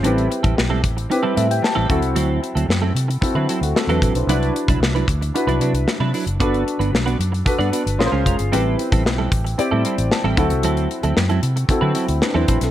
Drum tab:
HH |xxxx--xxx-xx--xx|x-xx--xxx-xx-xxx|xxxx-xxxxxxx--ox|xxxx-xxxxxxx--xx|
SD |----o-------o---|----o-------o---|----o-------o---|----o-------o---|
BD |---o--o-------o-|--------o-----o-|---o--o---------|o-------o-----o-|

HH |x-xx--xxx-xx--xx|xxxx-xxxx-xx--xx|
SD |----o-------o---|----o-------o--o|
BD |---o--o-------o-|--------o-----o-|